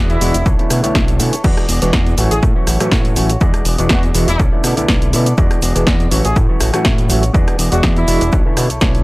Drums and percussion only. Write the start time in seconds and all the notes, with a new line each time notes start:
0.10 closed hi-hat, shaker
0.21 open hi-hat, shaker
0.34 closed hi-hat, shaker
0.46 kick, shaker
0.59 closed hi-hat
0.70 cross-stick, open hi-hat, shaker
0.84 closed hi-hat, shaker
0.95 kick, snare, shaker
1.08 closed hi-hat, shaker
1.20 open hi-hat, shaker
1.33 closed hi-hat, shaker
1.44 kick, crash, shaker
1.57 cross-stick, closed hi-hat, shaker
1.69 open hi-hat, shaker
1.82 closed hi-hat, shaker
1.93 kick, snare, shaker
2.06 closed hi-hat, shaker
2.18 open hi-hat, shaker
2.31 closed hi-hat, shaker
2.43 kick, shaker
2.67 cross-stick, open hi-hat, shaker
2.80 cross-stick, closed hi-hat, shaker
2.92 kick, snare, shaker
3.05 closed hi-hat, shaker
3.16 open hi-hat, shaker
3.30 closed hi-hat, shaker
3.41 kick, shaker
3.54 cross-stick, closed hi-hat, shaker
3.65 open hi-hat, shaker
3.78 closed hi-hat, shaker
3.89 kick, snare, shaker
4.03 closed hi-hat, shaker
4.15 open hi-hat, shaker
4.28 closed hi-hat, shaker
4.39 kick, shaker
4.64 cross-stick, open hi-hat, shaker
4.77 closed hi-hat, shaker
4.88 kick, snare, shaker
5.02 closed hi-hat, shaker
5.13 open hi-hat, shaker
5.26 closed hi-hat, shaker
5.38 kick, shaker
5.51 cross-stick, closed hi-hat, shaker
5.62 open hi-hat, shaker
5.75 closed hi-hat, shaker
5.87 kick, snare, shaker
6.00 closed hi-hat, shaker
6.11 open hi-hat, shaker
6.24 closed hi-hat, shaker
6.36 kick, shaker
6.60 cross-stick, open hi-hat, shaker
6.74 cross-stick, closed hi-hat, shaker
6.85 kick, snare, shaker
6.98 closed hi-hat, shaker
7.09 open hi-hat, shaker
7.23 closed hi-hat, shaker
7.34 kick, shaker
7.47 cross-stick, closed hi-hat, shaker
7.59 open hi-hat, shaker
7.72 closed hi-hat, shaker
7.83 kick, snare, shaker
7.96 closed hi-hat, shaker
8.08 open hi-hat, shaker
8.21 closed hi-hat, shaker
8.32 kick, shaker
8.57 cross-stick, open hi-hat, shaker
8.70 closed hi-hat, shaker
8.81 kick, snare, shaker
8.95 closed hi-hat, shaker